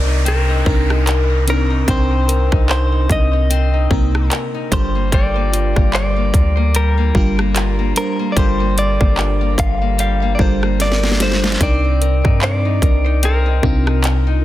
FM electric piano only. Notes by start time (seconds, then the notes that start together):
Already playing: C3 C4 D4 D#4 A#4
0.65 C3 C4 D4 D#4 A#4
1.47 C3 C4 D4 D#4 A#4
1.87 C3 C4 D4 D#4 A#4
3.90 C3 A#3 C4 D#4 A#4
4.71 G3 D4 F4 A4 A#4
7.15 G3 D4 F4 G4 A#4
7.96 G3 D4 F4 A#4 C5
8.36 G3 D4 F4 A4 A#4
10.38 G3 D4 F4 A4 A#4
11.19 G3 D4 F4 A4 C5
11.60 C3 C4 D4 D#4 A#4
13.62 C3 C4 D4 D#4 F4